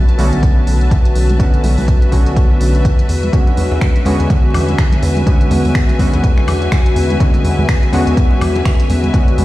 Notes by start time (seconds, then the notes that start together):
Already playing: D3 A3 B3 C#4 F#4 B4 E5 A5
0.09 closed hi-hat
0.18 B1 D3 A3 B3 C#4 F#4, open hi-hat, high conga
0.33 B1, closed hi-hat
0.43 kick, closed hi-hat
0.67 B1, open hi-hat
0.81 closed hi-hat
0.91 kick, closed hi-hat
1.05 closed hi-hat
1.15 B1, open hi-hat
1.29 closed hi-hat, high conga
1.39 D3 A3 B3 C#4 F#4, kick, closed hi-hat
1.54 closed hi-hat
1.64 B1, open hi-hat, high conga
1.78 B1, open hi-hat, high conga
1.88 kick, closed hi-hat
2.02 closed hi-hat
2.11 B1 D3 A3 B3 C#4 F#4, kick, open hi-hat, high conga
2.26 B1, closed hi-hat
2.36 kick, closed hi-hat
2.61 B1, open hi-hat
2.75 closed hi-hat
2.85 kick, closed hi-hat
2.99 closed hi-hat
3.09 E2, open hi-hat
3.23 closed hi-hat, high conga
3.32 D3 G#3 B3 C#4 F#4, kick, closed hi-hat
3.47 closed hi-hat, muted conga
3.57 E2, open hi-hat, high conga
3.72 E2, muted conga, high conga
3.81 finger snap, kick, closed hi-hat
3.96 closed hi-hat
4.05 E2 D3 G#3 B3 C#4 F#4 G#5, open hi-hat, muted conga, high conga
4.20 E2, closed hi-hat
4.30 kick, closed hi-hat, muted conga
4.54 E2, open hi-hat, low conga, high woodblock
4.68 closed hi-hat, muted conga
4.78 finger snap, kick, closed hi-hat
4.92 closed hi-hat, muted conga
5.03 E2, open hi-hat
5.17 closed hi-hat, high conga
5.26 D3 G#3 B3 C#4 F#4, kick, closed hi-hat, muted conga
5.41 closed hi-hat
5.51 E2, open hi-hat, muted conga, high conga
5.65 E2, open hi-hat, high conga
5.75 finger snap, kick, closed hi-hat
5.89 closed hi-hat, muted conga
5.98 E2 D3 G#3 B3 C#4 F#4, kick, open hi-hat, high conga
6.13 E2, closed hi-hat, muted conga
6.24 kick, closed hi-hat
6.38 finger snap
6.47 E2, open hi-hat, muted conga, low conga, high woodblock
6.62 closed hi-hat
6.72 finger snap, kick, closed hi-hat, muted conga
6.86 closed hi-hat
6.96 E2, open hi-hat
7.10 closed hi-hat, muted conga, high conga
7.20 D3 G#3 B3 C#4 F#4, kick, closed hi-hat
7.34 closed hi-hat, muted conga
7.44 E2, open hi-hat, high conga
7.59 E2, high conga
7.69 finger snap, kick, closed hi-hat, muted conga
7.83 closed hi-hat
7.92 E2 D3 G#3 B3 C#4 F#4, open hi-hat, muted conga, high conga
8.07 E2, closed hi-hat
8.17 kick, closed hi-hat
8.31 muted conga
8.41 E2, open hi-hat, low conga, high woodblock
8.55 closed hi-hat, muted conga
8.65 finger snap, kick, closed hi-hat
8.80 closed hi-hat
8.90 E2, open hi-hat, muted conga
9.04 closed hi-hat, high conga
9.13 D3 G#3 B3 C#4 F#4, kick, closed hi-hat, muted conga
9.28 closed hi-hat
9.38 E2, open hi-hat, high conga